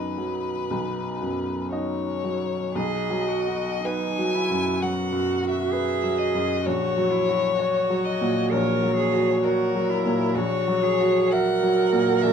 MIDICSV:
0, 0, Header, 1, 4, 480
1, 0, Start_track
1, 0, Key_signature, 5, "major"
1, 0, Tempo, 1029160
1, 1284, Time_signature, 4, 2, 24, 8
1, 1285, Tempo, 1090909
1, 1765, Tempo, 970874
1, 2245, Tempo, 925926
1, 6139, End_track
2, 0, Start_track
2, 0, Title_t, "Violin"
2, 0, Program_c, 0, 40
2, 0, Note_on_c, 0, 71, 43
2, 806, Note_off_c, 0, 71, 0
2, 808, Note_on_c, 0, 73, 49
2, 1287, Note_on_c, 0, 75, 58
2, 1294, Note_off_c, 0, 73, 0
2, 1769, Note_on_c, 0, 80, 76
2, 1776, Note_off_c, 0, 75, 0
2, 2247, Note_on_c, 0, 78, 58
2, 2254, Note_off_c, 0, 80, 0
2, 2593, Note_off_c, 0, 78, 0
2, 2596, Note_on_c, 0, 76, 63
2, 2953, Note_on_c, 0, 75, 61
2, 2960, Note_off_c, 0, 76, 0
2, 3199, Note_on_c, 0, 73, 75
2, 3206, Note_off_c, 0, 75, 0
2, 3920, Note_on_c, 0, 75, 65
2, 3928, Note_off_c, 0, 73, 0
2, 4158, Note_off_c, 0, 75, 0
2, 4163, Note_on_c, 0, 73, 65
2, 4640, Note_on_c, 0, 70, 63
2, 4647, Note_off_c, 0, 73, 0
2, 5115, Note_on_c, 0, 73, 76
2, 5123, Note_off_c, 0, 70, 0
2, 5613, Note_on_c, 0, 78, 70
2, 5621, Note_off_c, 0, 73, 0
2, 6051, Note_off_c, 0, 78, 0
2, 6054, Note_on_c, 0, 78, 53
2, 6081, Note_on_c, 0, 76, 74
2, 6089, Note_off_c, 0, 78, 0
2, 6139, Note_off_c, 0, 76, 0
2, 6139, End_track
3, 0, Start_track
3, 0, Title_t, "Cello"
3, 0, Program_c, 1, 42
3, 1279, Note_on_c, 1, 68, 48
3, 1517, Note_on_c, 1, 66, 38
3, 1523, Note_off_c, 1, 68, 0
3, 1760, Note_off_c, 1, 66, 0
3, 1763, Note_on_c, 1, 63, 44
3, 2008, Note_on_c, 1, 64, 42
3, 2015, Note_off_c, 1, 63, 0
3, 2241, Note_on_c, 1, 66, 44
3, 2249, Note_off_c, 1, 64, 0
3, 2710, Note_on_c, 1, 68, 51
3, 2717, Note_off_c, 1, 66, 0
3, 3189, Note_off_c, 1, 68, 0
3, 3192, Note_on_c, 1, 66, 48
3, 3435, Note_on_c, 1, 64, 43
3, 3442, Note_off_c, 1, 66, 0
3, 3671, Note_off_c, 1, 64, 0
3, 3674, Note_on_c, 1, 66, 56
3, 4160, Note_on_c, 1, 70, 48
3, 4168, Note_off_c, 1, 66, 0
3, 4394, Note_off_c, 1, 70, 0
3, 4397, Note_on_c, 1, 68, 52
3, 4633, Note_off_c, 1, 68, 0
3, 4637, Note_on_c, 1, 66, 50
3, 4879, Note_on_c, 1, 64, 50
3, 4887, Note_off_c, 1, 66, 0
3, 5112, Note_on_c, 1, 66, 56
3, 5119, Note_off_c, 1, 64, 0
3, 5364, Note_on_c, 1, 68, 54
3, 5371, Note_off_c, 1, 66, 0
3, 5618, Note_on_c, 1, 70, 68
3, 5626, Note_off_c, 1, 68, 0
3, 6139, Note_off_c, 1, 70, 0
3, 6139, End_track
4, 0, Start_track
4, 0, Title_t, "Grand piano"
4, 0, Program_c, 2, 0
4, 0, Control_c, 2, 64, 127
4, 0, Note_on_c, 2, 35, 31
4, 0, Note_on_c, 2, 42, 25
4, 0, Note_on_c, 2, 63, 26
4, 0, Note_on_c, 2, 75, 28
4, 67, Note_off_c, 2, 63, 0
4, 67, Note_off_c, 2, 75, 0
4, 83, Note_on_c, 2, 54, 27
4, 307, Note_off_c, 2, 35, 0
4, 329, Note_on_c, 2, 35, 30
4, 469, Note_off_c, 2, 54, 0
4, 567, Note_off_c, 2, 42, 0
4, 567, Note_on_c, 2, 42, 26
4, 803, Note_on_c, 2, 63, 23
4, 805, Note_on_c, 2, 75, 24
4, 949, Note_off_c, 2, 42, 0
4, 1026, Note_off_c, 2, 63, 0
4, 1027, Note_off_c, 2, 75, 0
4, 1045, Note_on_c, 2, 54, 24
4, 1268, Note_off_c, 2, 35, 0
4, 1284, Note_on_c, 2, 35, 40
4, 1285, Note_off_c, 2, 54, 0
4, 1292, Control_c, 2, 64, 0
4, 1362, Control_c, 2, 64, 127
4, 1436, Note_on_c, 2, 54, 32
4, 1602, Note_on_c, 2, 66, 33
4, 1700, Note_off_c, 2, 54, 0
4, 1766, Note_on_c, 2, 71, 37
4, 1866, Note_off_c, 2, 66, 0
4, 1933, Note_on_c, 2, 54, 35
4, 2029, Note_off_c, 2, 71, 0
4, 2090, Note_on_c, 2, 42, 34
4, 2183, Note_off_c, 2, 54, 0
4, 2224, Note_off_c, 2, 35, 0
4, 2246, Note_on_c, 2, 54, 36
4, 2338, Note_off_c, 2, 42, 0
4, 2403, Note_on_c, 2, 42, 37
4, 2495, Note_off_c, 2, 54, 0
4, 2560, Note_on_c, 2, 66, 35
4, 2651, Note_off_c, 2, 42, 0
4, 2718, Note_on_c, 2, 71, 36
4, 2809, Note_off_c, 2, 66, 0
4, 2875, Note_on_c, 2, 54, 39
4, 2971, Note_off_c, 2, 71, 0
4, 3039, Note_on_c, 2, 42, 34
4, 3134, Note_off_c, 2, 54, 0
4, 3199, Note_off_c, 2, 42, 0
4, 3201, Note_on_c, 2, 34, 43
4, 3207, Control_c, 2, 64, 0
4, 3280, Control_c, 2, 64, 127
4, 3363, Note_on_c, 2, 54, 38
4, 3525, Note_on_c, 2, 66, 36
4, 3617, Note_off_c, 2, 54, 0
4, 3684, Note_on_c, 2, 73, 39
4, 3777, Note_off_c, 2, 66, 0
4, 3843, Note_on_c, 2, 54, 38
4, 3936, Note_off_c, 2, 73, 0
4, 4006, Note_on_c, 2, 46, 35
4, 4095, Note_off_c, 2, 54, 0
4, 4138, Note_off_c, 2, 34, 0
4, 4165, Note_on_c, 2, 34, 42
4, 4257, Note_off_c, 2, 46, 0
4, 4325, Note_on_c, 2, 54, 39
4, 4481, Note_on_c, 2, 66, 37
4, 4577, Note_off_c, 2, 54, 0
4, 4645, Note_on_c, 2, 73, 41
4, 4735, Note_off_c, 2, 66, 0
4, 4803, Note_on_c, 2, 54, 44
4, 4895, Note_off_c, 2, 73, 0
4, 4962, Note_on_c, 2, 46, 38
4, 5052, Note_off_c, 2, 54, 0
4, 5095, Note_off_c, 2, 34, 0
4, 5116, Note_off_c, 2, 46, 0
4, 5117, Note_on_c, 2, 34, 44
4, 5120, Control_c, 2, 64, 0
4, 5210, Control_c, 2, 64, 127
4, 5282, Note_on_c, 2, 54, 44
4, 5451, Note_on_c, 2, 66, 39
4, 5550, Note_off_c, 2, 54, 0
4, 5621, Note_on_c, 2, 76, 42
4, 5711, Note_off_c, 2, 66, 0
4, 5776, Note_on_c, 2, 54, 42
4, 5870, Note_off_c, 2, 76, 0
4, 5932, Note_on_c, 2, 46, 42
4, 6024, Note_off_c, 2, 54, 0
4, 6066, Note_off_c, 2, 34, 0
4, 6090, Note_on_c, 2, 34, 44
4, 6139, Note_off_c, 2, 34, 0
4, 6139, Note_off_c, 2, 46, 0
4, 6139, End_track
0, 0, End_of_file